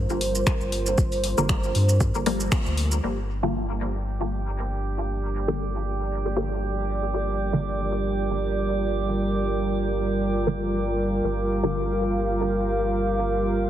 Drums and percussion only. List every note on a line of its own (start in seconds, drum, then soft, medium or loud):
0.10 shaker soft
0.21 open hi-hat medium
0.35 shaker medium
0.47 finger snap medium
0.47 kick loud
0.47 shaker soft
0.61 shaker soft
0.72 open hi-hat medium
0.86 shaker medium
0.98 kick loud
0.98 shaker soft
1.12 open hi-hat soft
1.12 shaker soft
1.24 open hi-hat medium
1.38 shaker medium
1.49 finger snap medium
1.49 kick loud
1.49 shaker medium
1.63 shaker soft
1.75 open hi-hat medium
1.89 shaker medium
2.01 kick loud
2.01 shaker soft
2.15 shaker soft
2.26 open hi-hat medium
2.40 shaker medium
2.52 finger snap medium
2.52 kick loud
2.52 shaker medium
2.66 shaker soft
2.77 open hi-hat medium
2.92 shaker medium